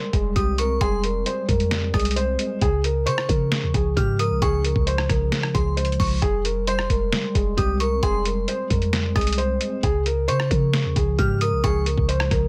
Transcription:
Already playing: G3 G#3 A#4 C6
0.13 F1 G#3 G#4, kick, closed hi-hat
0.35 C2 C4 G4 D#6, kick, closed hi-hat
0.58 G#3 A#4 C#6, closed hi-hat
0.81 F1 G3 G#4 C6, kick, closed hi-hat
1.04 A#4, closed hi-hat
1.26 G3 C5, closed hi-hat
1.49 F2 G#3 A#4, kick, closed hi-hat
1.60 closed hi-hat
1.71 G3, snare, closed hi-hat
1.94 C2 G#3 G#4 D#6, kick, cross-stick, closed hi-hat
2.00 closed hi-hat
2.05 closed hi-hat
2.11 closed hi-hat
2.16 C4 C5, closed hi-hat
2.39 G#3, closed hi-hat
2.61 C#2 C#3 G#4, kick, closed hi-hat
2.84 A#4, closed hi-hat
3.06 C#3 C5 C#6, closed hi-hat
3.18 cross-stick
3.29 C#3 F3 A#4, kick, closed hi-hat
3.52 C#3, snare, closed hi-hat
3.63 D#2
3.74 C#2 F3 G#4, kick, closed hi-hat
3.96 G#2 G#3 G4 F6, kick, closed hi-hat
4.19 F3 A#4 D#6, closed hi-hat
4.31 C2
4.42 C#2 C#3 G#4 C#6, kick, closed hi-hat
4.64 A#4, closed hi-hat
4.76 C#2, kick
4.87 C#3 C5, closed hi-hat
4.98 cross-stick
5.09 C2 F3 A#4, kick, cross-stick, closed hi-hat
5.32 C#3, snare, closed hi-hat
5.43 cross-stick
5.54 C#2 F3 G#4 C6, kick, closed hi-hat
5.77 G#3 C5, closed hi-hat
5.85 closed hi-hat
5.92 closed hi-hat
6.00 C2 F3 C#6, kick, open hi-hat
6.22 F1 G3 G#4, kick, closed hi-hat
6.45 A#4, closed hi-hat
6.67 G3 C5 C6, closed hi-hat
6.79 cross-stick
6.90 F1 G#3 A#4, kick, closed hi-hat
7.12 G3, snare, closed hi-hat
7.35 F1 G#3 G#4, kick, closed hi-hat
7.57 C2 C4 G4 D#6, kick, closed hi-hat
7.80 A#4 C#6, closed hi-hat
8.03 F1 G#4 C6, kick, closed hi-hat
8.25 A#4, closed hi-hat
8.48 G3 C5, closed hi-hat
8.70 F2 G#3 A#4, kick, closed hi-hat
8.82 closed hi-hat
8.93 G3, snare, closed hi-hat
9.15 C2 G#3 G#4 D#6, kick, cross-stick, closed hi-hat
9.21 closed hi-hat
9.27 closed hi-hat
9.33 closed hi-hat
9.38 C4 C5, closed hi-hat
9.61 G#3, closed hi-hat
9.83 C#2 C#3 G#4, kick, closed hi-hat
10.06 A#4, closed hi-hat
10.28 C#3 C5 C#6, closed hi-hat
10.40 cross-stick
10.50 C#3 F3 A#4, kick, closed hi-hat
10.73 C#3, snare, closed hi-hat
10.85 D#2
10.96 C#2 F3 G#4, kick, closed hi-hat
11.18 G#2 G#3 G4 F6, kick, closed hi-hat
11.41 F3 A#4 D#6, closed hi-hat
11.53 C2
11.64 C#2 C#3 G#4 C#6, kick, closed hi-hat
11.86 A#4, closed hi-hat
11.98 C#2, kick
12.08 C#3 C5, closed hi-hat
12.20 cross-stick
12.31 C2 F3 A#4, kick, cross-stick, closed hi-hat

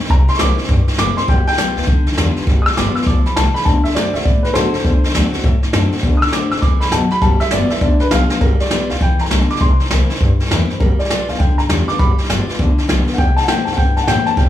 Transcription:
0.00 C4, muted upright bass stroke
0.05 snare
0.10 C2 C3 A#5, kick, snare
0.28 C6, snare
0.34 C#6, snare
0.39 C2 E3 A#3 C4 E4 D6, snare, hi-hat pedal
0.57 C4 E4, muted upright bass stroke, snare
0.64 snare
0.68 G2, kick, snare
0.88 muted upright bass stroke, snare
0.93 snare
0.98 F#1 E3 A#3 C4 E4 D6, snare, hi-hat pedal
1.16 C4 E4 C6, muted upright bass stroke, snare
1.28 G1 G3 G5, kick, snare
1.47 G5, snare
1.52 snare
1.57 B1 G3 B3 F4, snare, hi-hat pedal
1.76 D2 B3 F4, snare
1.82 snare
1.87 E2 D3, kick, snare
2.06 G2, snare
2.12 snare
2.17 E2 G3 B3 F4, snare, hi-hat pedal
2.36 muted upright bass stroke, snare
2.42 snare
2.47 G1 G3, kick, snare
2.62 D#6
2.66 E6, muted upright bass stroke, snare
2.72 G3, snare
2.77 G1 B3 F4 D6, snare, hi-hat pedal
2.95 B3 F4 E6, muted upright bass stroke, snare
3.02 snare
3.07 D2 F3 D6, kick, snare
3.25 B5, muted upright bass stroke, snare
3.36 C2 E3 A5, snare, hi-hat pedal
3.54 B5, muted upright bass stroke, snare
3.61 snare
3.65 D2 D3 A5, kick, snare
3.84 E5, muted upright bass stroke, snare
3.91 snare
3.95 F#2 D3 A3 C4 F#4 D5, snare, hi-hat pedal
4.14 A2 C4 F#4 E5, snare
4.21 D5, snare
4.25 A2 B2, kick, snare
4.43 D3 B4, snare
4.53 B2 D3 A3 C4 F#4 A4 C5, snare, hi-hat pedal
4.74 C4 F#4, muted upright bass stroke, snare
4.79 snare
4.85 D2 D3, kick, snare
5.04 muted upright bass stroke, snare
5.09 snare
5.14 D2 D3 A3 C4 F#4, snare, hi-hat pedal
5.33 C4 F#4, muted upright bass stroke, snare
5.39 snare
5.44 A2, kick, snare
5.63 muted upright bass stroke, snare
5.73 F#2 D3 A3 C4 F#4, snare, hi-hat pedal
5.92 C4 F#4, muted upright bass stroke, snare
5.97 snare
6.03 D2 D3, kick, snare
6.17 D#6
6.22 E6, muted upright bass stroke, snare
6.27 snare
6.32 F#2 D3 A3 C4 F#4 D6, snare, hi-hat pedal
6.51 A2 C4 F#4 E6, snare
6.57 snare
6.62 B2 E3 D6, kick, snare
6.80 D3 B5, snare
6.86 snare
6.92 B2 F#3 A5, snare, hi-hat pedal
7.10 B5, muted upright bass stroke, snare
7.21 G1 G3 A5, kick, snare
7.40 E5, snare
7.46 snare
7.51 G1 G3 B3 F4 D5, snare, hi-hat pedal
7.70 B3 F4 E5, muted upright bass stroke, snare
7.75 snare
7.81 D2 D3 D5, kick, snare
8.00 B4, muted upright bass stroke, snare
8.11 B1 G3 B3 F4 F5, snare, hi-hat pedal
8.30 B3 F4, snare
8.41 G1 G3 A#4, kick, snare
8.60 D5, snare
8.65 snare
8.70 B1 G3 B3 F4, snare, hi-hat pedal
8.89 D2 B3 F4 F5, snare
8.95 snare
9.01 E2 E3 G5, kick, snare
9.19 G2 A#5, snare
9.26 snare
9.31 B1 D3, snare, hi-hat pedal
9.50 D6, snare
9.56 snare
9.61 C2 C3 C6, kick, snare
9.80 muted upright bass stroke, snare
9.85 snare
9.91 C2 E3 A#3 C4 E4, snare, hi-hat pedal
10.09 C4 E4, muted upright bass stroke, snare
10.15 snare
10.20 G2, kick, snare
10.40 muted upright bass stroke, snare
10.45 snare
10.50 E2 E3 A#3 C4 E4, snare, hi-hat pedal
10.68 C4 E4, snare
10.80 G1 G3 A#4, kick, snare
10.99 D5, muted upright bass stroke, snare
11.05 snare
11.09 B1 G3 B3 F4, snare, hi-hat pedal
11.28 D2 B3 F4 F5, snare
11.35 G5, snare
11.39 E2 D3, kick, snare
11.58 G2 A#5, snare
11.69 E2 G3 B3 F4, snare, hi-hat pedal
11.88 B3 F4 D6, muted upright bass stroke, snare
11.99 G1 G3 B5 D6, kick, snare
12.18 muted upright bass stroke, snare
12.24 snare
12.29 G1 G3 B3 F4, snare, hi-hat pedal
12.47 B3 F4, muted upright bass stroke, snare
12.54 snare
12.59 D2 D3, kick, snare
12.78 muted upright bass stroke, snare
12.87 B1 G3 B3 F4, snare, hi-hat pedal
13.06 B3 F4, muted upright bass stroke, snare
13.13 F#5, snare
13.18 C2 C3 G5, kick, snare
13.36 A5, muted upright bass stroke, snare
13.42 F#5, snare
13.47 E2 E3 A#3 C4 E4 G5, snare, hi-hat pedal
13.65 G2 C4 E4 A5, snare
13.72 F#5, snare
13.77 G2 A2 G5, kick, snare
13.97 C3 A5, snare
14.03 F#5
14.07 A2 E3 A#3 C4 E4 G5, snare, hi-hat pedal
14.26 A5, muted upright bass stroke, snare
14.37 C2 C3 G5, kick, snare

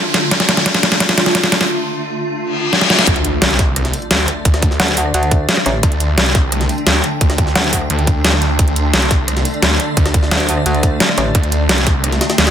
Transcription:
Already playing: D3 A3 D4 F4, riser
0.14 snare, closed hi-hat
0.31 kick, snare, closed hi-hat
0.40 snare, closed hi-hat
0.49 snare, closed hi-hat
0.57 snare
0.66 kick, snare, closed hi-hat
0.75 snare, closed hi-hat
0.83 snare, closed hi-hat
0.92 snare
1.00 kick, snare, closed hi-hat
1.09 snare, closed hi-hat
1.18 snare, closed hi-hat
1.26 snare
1.35 kick, snare, closed hi-hat
1.44 snare
1.52 snare, closed hi-hat
1.61 snare
2.38 reverse cymbal
2.73 snare
2.81 snare
2.90 snare
2.99 snare
3.07 D2 D3 A3 D4 D5, kick, closed hi-hat, impact
3.16 closed hi-hat
3.24 closed hi-hat
3.42 C2, snare, closed hi-hat
3.50 closed hi-hat
3.59 kick, snare, closed hi-hat
3.76 cross-stick, closed hi-hat
3.85 snare, closed hi-hat
3.93 closed hi-hat, open hi-hat
4.02 closed hi-hat
4.11 D2, snare, closed hi-hat
4.28 cross-stick, closed hi-hat
4.45 D2, kick, closed hi-hat
4.54 cross-stick, snare, closed hi-hat
4.62 kick, closed hi-hat
4.71 snare
4.80 D2, snare, closed hi-hat
4.88 closed hi-hat
4.97 closed hi-hat, open hi-hat
5.06 cross-stick
5.14 D2, closed hi-hat
5.23 closed hi-hat
5.31 kick, closed hi-hat
5.49 snare, closed hi-hat
5.57 cross-stick, snare
5.66 A1, closed hi-hat
5.83 D2 G5, kick, closed hi-hat
5.92 closed hi-hat
6.00 closed hi-hat
6.18 C2, snare, closed hi-hat
6.26 closed hi-hat
6.35 kick, snare, closed hi-hat
6.52 cross-stick, closed hi-hat
6.61 snare, closed hi-hat
6.69 closed hi-hat, open hi-hat
6.78 closed hi-hat
6.87 D2, snare, closed hi-hat
7.04 cross-stick, closed hi-hat
7.21 D2, kick, closed hi-hat
7.30 cross-stick, snare, closed hi-hat
7.38 kick, closed hi-hat
7.47 snare
7.55 D2, snare, closed hi-hat
7.64 closed hi-hat
7.73 kick, closed hi-hat, open hi-hat
7.81 cross-stick
7.90 D2, closed hi-hat
7.99 closed hi-hat
8.07 kick, closed hi-hat
8.25 snare, closed hi-hat
8.33 cross-stick, snare
8.42 D2, closed hi-hat
8.59 D2 D5, kick, closed hi-hat
8.68 closed hi-hat
8.76 closed hi-hat
8.93 C2, snare, closed hi-hat
9.02 closed hi-hat
9.11 kick, snare, closed hi-hat
9.28 cross-stick, closed hi-hat
9.37 snare, closed hi-hat
9.45 closed hi-hat, open hi-hat
9.54 closed hi-hat
9.62 D2, snare, closed hi-hat
9.80 cross-stick, closed hi-hat
9.97 D2, kick, closed hi-hat
10.06 cross-stick, snare, closed hi-hat
10.14 kick, closed hi-hat
10.23 snare
10.31 D2, snare, closed hi-hat
10.40 closed hi-hat
10.49 closed hi-hat, open hi-hat
10.57 cross-stick
10.66 D2, closed hi-hat
10.75 closed hi-hat
10.83 kick, closed hi-hat
11.00 snare, closed hi-hat
11.09 cross-stick, snare
11.18 A1, closed hi-hat
11.35 D2 G5, kick, closed hi-hat
11.43 closed hi-hat
11.52 closed hi-hat
11.69 C2, snare, closed hi-hat
11.78 closed hi-hat
11.87 kick, snare, closed hi-hat
12.04 cross-stick, closed hi-hat
12.12 snare, closed hi-hat
12.21 snare, closed hi-hat
12.30 snare, closed hi-hat
12.38 D2, snare, closed hi-hat
12.47 snare, closed hi-hat

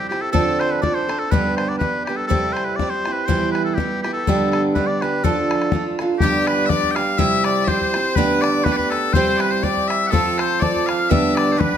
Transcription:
Already playing: G3 C4 E4
0.09 E4 G4, bodhran
0.13 C4
0.21 A4
0.32 D3 F3 C4 D4 A4, bodhran
0.60 C5, bodhran
0.71 B4
0.82 F3 C4 D4 A4 D5, bodhran
0.95 C5
1.09 C4 D4 A4, bodhran
1.19 A4
1.31 G2 D3 G3 B3 D4 G4 B4, bodhran
1.56 C5, bodhran
1.69 D5
1.78 G3 B3 D4 G4 B4, bodhran
2.05 D4 G4, bodhran
2.09 G3 B3
2.16 A4
2.27 C3 G3 C4 E4 G4 A4, bodhran
2.53 C5, bodhran
2.65 B4
2.76 G3 D5, bodhran
2.80 C4 E4 G4
2.90 C5
3.05 C4 E4 G4, bodhran
3.13 B4
3.26 E3 G3 B3 E4 G4 C5, bodhran
3.52 B4, bodhran
3.64 A4
3.74 G3 B3 G4, bodhran
3.79 E4 G4
4.02 B3 E4 G4, bodhran
4.13 A4
4.27 G2 D3 G3 B3 D4 G4, bodhran
4.51 A4, bodhran
4.75 G3 B3 D4 G4 B4, bodhran
4.87 D5
5.01 G3 B3 D4 G4 B4, bodhran
5.24 D3 F3 D4 F4 A4, bodhran
5.51 bodhran
5.62 bodhran
5.72 F3 D4 F4 A4, bodhran
5.99 D4 F4 A4, bodhran
6.19 G2 D3 G3 B3 G4, bodhran
6.23 D4 G4
6.47 B4, bodhran
6.66 G3 D5 E5
6.70 B3 D4 G4, bodhran
6.83 bodhran
6.91 G5
6.95 G3 B3 D4 G4 F5, bodhran
7.18 C3 G3 C4 E4 G4 E5, bodhran
7.44 D5, bodhran
7.65 G3 C4 E4 C5 E5, bodhran
7.69 G4
7.81 bodhran
7.93 C4 E4 G4, bodhran
8.15 G2 D3 A3 B3 D4 G4 B4, bodhran
8.41 D5, bodhran
8.64 A3 B3 D4 G4 B4, bodhran
8.72 D5
8.77 B4, bodhran
8.90 A4, bodhran
9.13 C3 G3 C4 E4 G4 C5, bodhran
9.37 B4 D5, bodhran
9.50 C5
9.63 G3 C4 E4 G4 D5, bodhran
9.77 bodhran
9.88 E5, bodhran
10.07 A4 F#5
10.12 F3 C4 F4 A4, bodhran
10.38 C5, bodhran
10.60 F3 C4 F4 A4 D5, bodhran
10.76 bodhran
10.86 F5, bodhran
11.09 G2 D3 G3 B3 D4 G4 E5, bodhran
11.35 D5, bodhran
11.52 C5
11.56 G3 B3 D4 G4 B4
11.61 bodhran
11.74 bodhran

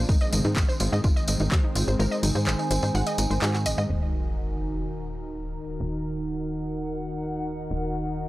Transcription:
Already playing: F5
0.09 G#1 D#3 G#3 C4 D#4, kick, tambourine
0.21 D#5, tambourine
0.33 G#1 D#5, closed hi-hat, mid tom, tambourine
0.44 G#2 D#4, tambourine
0.56 G#1 F#4, kick, clap, tambourine
0.69 C5, tambourine
0.80 G#1 F4, closed hi-hat, tambourine
0.85 C5
0.92 G#2 D#5, tambourine
1.04 G#1 F4, kick, tambourine
1.16 D#5, tambourine
1.28 G#1 D#5, closed hi-hat, tambourine
1.40 G#1 D#4, tambourine
1.52 D#2 F#4, kick, clap, tambourine
1.64 D#4
1.72 G#1 F4 G#5, closed hi-hat
1.77 tambourine
1.88 G#1 C5, tambourine
1.99 G#1 A#4, tambourine
2.11 D#5, tambourine
2.23 G#1 D#4, closed hi-hat, mid tom, tambourine
2.35 G#2 C5, tambourine
2.46 G#1 C5, clap, tambourine
2.59 D#4, tambourine
2.71 G#1 C5, closed hi-hat, tambourine
2.82 G#2 C5, tambourine
2.95 G#1 F#5, tambourine
3.06 D#5, closed hi-hat, tambourine
3.18 G#1 D#4, closed hi-hat, tambourine
3.30 G#1 C5, tambourine
3.42 G#2 F#4, clap, tambourine
3.54 F#4, clap, tambourine
3.66 G#1 D#5, closed hi-hat, tambourine
3.78 G#2 D#5, tambourine
3.90 D#1 D#3 D#4 F#4 A#4, sub drop
4.41 A#4
5.50 F#5
5.80 D#1
7.71 D#1

